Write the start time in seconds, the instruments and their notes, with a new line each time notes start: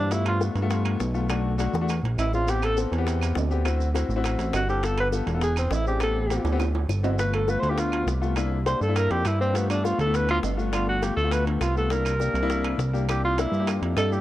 Already playing: analog synth bass G2
0.00 tenor saxophone D4
0.11 grand piano A3 B3 F4, tenor saxophone E4, high bongo, high timbale, maracas
0.26 tenor saxophone F4, high timbale, claves
0.41 grand piano A3 B3 F4, high bongo, maracas
0.55 analog synth bass G2, high timbale, maracas
0.62 grand piano A3 B3 F4
0.70 high bongo, high timbale, maracas
0.85 high timbale, claves
1.00 analog synth bass B1, high bongo, low bongo, maracas
1.14 grand piano A3 B3 F4, maracas
1.29 grand piano A3 D4 F#4, high bongo, high timbale, claves, maracas
1.45 high bongo
1.58 grand piano A3 D4 F#4, high bongo, high timbale, maracas
1.73 analog synth bass E2, high bongo, maracas
1.81 grand piano A3 D4 F#4
1.89 high bongo, high timbale, claves, maracas
2.03 analog synth bass A#1, low bongo, high timbale
2.18 analog synth bass A1, tenor saxophone E4, high timbale, low timbale, claves, maracas
2.33 grand piano C4 D4 G#4, tenor saxophone F4, low bongo, maracas
2.47 grand piano B3 C4 G4, tenor saxophone G4, high bongo, high timbale, maracas
2.62 tenor saxophone A4, high timbale, claves, maracas
2.76 grand piano B3 C4 A4, high bongo, maracas
2.91 analog synth bass E2, high timbale, maracas
2.98 grand piano B3 C4 G4
3.07 high bongo, high timbale, maracas
3.21 high timbale, claves, maracas
3.35 analog synth bass D2, high bongo, low bongo, low timbale, maracas
3.51 grand piano B3 C4 G4, maracas
3.65 grand piano C4 E4 F#4, high bongo, high timbale, claves, maracas
3.80 high bongo, maracas
3.94 grand piano C4 E4 F#4, high bongo, high timbale, maracas
4.09 analog synth bass A1, high bongo, maracas
4.16 grand piano C4 E4 F#4
4.24 high bongo, high timbale, claves, maracas
4.38 analog synth bass A1, high bongo, high timbale, maracas
4.53 analog synth bass G1, tenor saxophone F#4, high bongo, low bongo, high timbale, low timbale, claves, maracas
4.68 grand piano C4 E4 A4, tenor saxophone G4, maracas
4.83 grand piano B3 F4 A4, tenor saxophone A4, high bongo, high timbale, maracas
4.98 tenor saxophone B4, high timbale, claves
5.12 grand piano B3 F4 A4, high bongo, maracas
5.27 analog synth bass E1, high timbale, maracas
5.34 grand piano B3 F4 A4
5.41 tenor saxophone G#4, high bongo, high timbale, maracas
5.56 tenor saxophone C4, high timbale, claves, maracas
5.71 analog synth bass A1, tenor saxophone E4, high bongo, low bongo, low timbale, maracas
5.86 grand piano C4 D4 G#4, tenor saxophone G4, maracas
6.00 grand piano B3 C4 G4, tenor saxophone A4, high bongo, high timbale, claves, maracas
6.16 high bongo
6.30 grand piano B3 C4 G4, high bongo, high timbale, maracas
6.44 analog synth bass D2, high bongo, high timbale, maracas
6.52 grand piano B3 C4 G4
6.60 high bongo, high timbale, claves, maracas
6.75 low bongo, high timbale
6.89 analog synth bass G1, low bongo, claves, maracas
7.03 grand piano C4 E4 F#4, low bongo, low timbale, maracas
7.19 grand piano A3 B3 F4, tenor saxophone B4, high bongo, high timbale, maracas
7.33 tenor saxophone A4, high timbale, claves
7.48 grand piano A3 B3 F4, tenor saxophone B4, high bongo, maracas
7.59 analog synth bass D2, tenor saxophone C5, maracas
7.63 high timbale
7.70 grand piano A3 B3 F4, tenor saxophone G4
7.78 tenor saxophone F4, high bongo, high timbale, maracas
7.92 high timbale, claves
8.06 analog synth bass C2, high bongo, low bongo, maracas
8.22 grand piano A3 B3 F4, maracas
8.36 grand piano A#3 D4 E4, high bongo, high timbale, claves, maracas
8.52 high bongo
8.66 grand piano A#3 D4 G4, tenor saxophone C5, high bongo, high timbale, maracas
8.81 analog synth bass G2, tenor saxophone A4, high bongo, maracas
8.88 grand piano A#3 D4 E4
8.96 tenor saxophone A#4, high bongo, high timbale, claves, maracas
9.10 analog synth bass F2, tenor saxophone G4, high bongo, high timbale
9.25 analog synth bass G2, tenor saxophone E4, high bongo, low bongo, high timbale, claves, maracas
9.39 grand piano A#3 D4 G4, tenor saxophone C4, maracas
9.53 grand piano A3 B3 F4, tenor saxophone B3, high bongo, high timbale, maracas
9.70 tenor saxophone D4, high timbale, claves, maracas
9.84 grand piano A3 B3 F4, tenor saxophone F4, high bongo, maracas
9.99 analog synth bass D2, tenor saxophone A4, high timbale, maracas
10.06 grand piano A3 B3 E4
10.14 tenor saxophone B4, high bongo, high timbale, maracas
10.29 tenor saxophone F4, high timbale, claves
10.43 analog synth bass G1, high bongo, low bongo, low timbale, maracas
10.57 grand piano A3 B3 F4, maracas
10.72 grand piano A3 B3 D4, tenor saxophone F4, high bongo, high timbale, claves, maracas
10.87 tenor saxophone F#4, high bongo
11.02 grand piano A3 B3 F4, tenor saxophone G4, high bongo, high timbale, maracas
11.16 analog synth bass D2, tenor saxophone A4, high bongo, maracas
11.24 grand piano A3 B3 F4
11.31 tenor saxophone B4, high bongo, high timbale, claves, maracas
11.46 tenor saxophone D4, high bongo, high timbale
11.61 analog synth bass C2, tenor saxophone F4, high bongo, low bongo, high timbale, claves, maracas
11.75 grand piano A3 B3 F4, tenor saxophone A4, maracas
11.90 grand piano A#3 D4 E4, tenor saxophone A#4, high bongo, high timbale, maracas
12.05 high timbale, claves, maracas
12.20 grand piano A#3 D4 G4, high bongo, maracas
12.34 analog synth bass C2, high timbale, maracas
12.42 grand piano A#3 D4 E4
12.50 high bongo, high timbale, maracas
12.64 high timbale, claves
12.78 analog synth bass C2, high bongo, low bongo, maracas
12.93 grand piano A#3 D4 G4, maracas
13.09 grand piano A#3 D4 E4, tenor saxophone G4, high bongo, high timbale, claves, maracas
13.24 tenor saxophone F4, high bongo
13.37 grand piano A#3 D4 E4, tenor saxophone E4, high bongo, high timbale, maracas
13.52 analog synth bass G2, high bongo, maracas
13.59 grand piano A#3 D4 G4
13.67 high bongo, high timbale, claves, maracas
13.82 analog synth bass F2, high bongo, high timbale
13.96 analog synth bass G2, tenor saxophone A4, high bongo, low bongo, high timbale, low timbale, claves, maracas
14.10 grand piano A#3 D4 E4, tenor saxophone G4, maracas